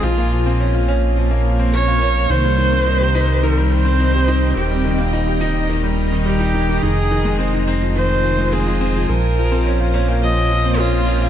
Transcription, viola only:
X:1
M:4/4
L:1/8
Q:1/4=106
K:Bbdor
V:1 name="Viola"
F2 z4 d2 | c4 B c3 | G3 z3 G2 | A3 z c2 A2 |
B3 z e2 F2 |]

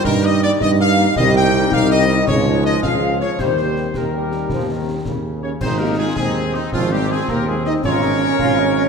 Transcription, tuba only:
X:1
M:6/8
L:1/8
Q:3/8=108
K:Eb
V:1 name="Tuba" clef=bass
G,,3 G,,3 | [K:Ab] C,,3 C,,3 | D,,3 D,,3 | E,,3 E,,3 |
E,,3 E,,3 | A,,,3 E,,3 | A,,,3 E,,3 | A,,,3 A,,,3 |]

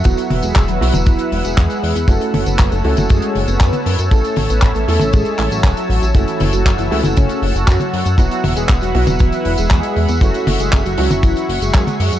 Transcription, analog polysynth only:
X:1
M:4/4
L:1/16
Q:1/4=118
K:F#m
V:1 name="Analog polysynth"
[F,F]2 z [G,G]2 [F,F]2 z [E,E]2 z [G,G]4 z | [A,A]2 z [B,B]2 [A,A]2 z [G,G]2 z [B,B]4 z | [A,A]2 z [B,B]2 [A,A]2 z [G,G]2 z [F,F]4 z | [E,E]2 z [F,F]2 [E,E]2 z [C,C]2 z [F,F]4 z |
[F,F]2 z [G,G]2 [F,F]2 z [E,E]2 z [G,G]4 z | [F,F]2 z [G,G]2 [F,F]2 z [E,E]2 z [G,G]4 z |]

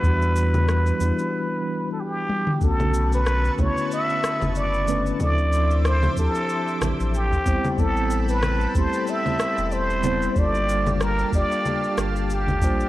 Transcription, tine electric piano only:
X:1
M:4/4
L:1/8
Q:"Swing 16ths" 1/4=93
K:Edor
V:1 name="Tine electric piano"
[E,G,B,DF]3 [E,G,B,DE] z4 | [K:Bphr] [D,A,B,^CF]3 [D,A,B,CE]4 [D,A,B,CB] | [=F,CDEA]3 [F,CDEG]4 [G,B,CEc] | [G,B,CEA]3 [G,A,CEG]4 [G,B,CEc] |
[G,_B,D=FA]3 [G,B,DFG]4 [G,B,DFc] |]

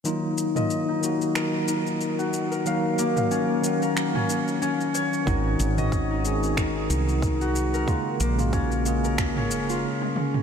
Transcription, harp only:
X:1
M:4/4
L:1/16
Q:"Swing 16ths" 1/4=92
K:Ebdor
V:1 name="Harp"
E3 e z E3 B2 E3 G z B | z2 B,2 D z2 B z D z2 D z d2 | E3 e z E3 B2 E3 G z B | z2 B,2 D z2 B z D z F z4 |]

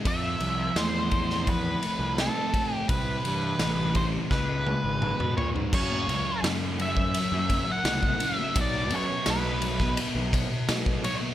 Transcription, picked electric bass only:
X:1
M:4/4
L:1/16
Q:1/4=85
K:F#phr
V:1 name="Picked electric bass" clef=bass
=F,,2 =C,,2 E,,6- E,, C,,2 z3 | =C,,2 G,,2 A,,,4 ^C,,3 ^G,,,2 B,, _B,, ^G,, | F,,2 C,, z F,,4- F,, F,,2 z =C,,2 z2 | B,,,2 F,, z B,,,4- B,,, B,,,2 z B,,2 z2 |]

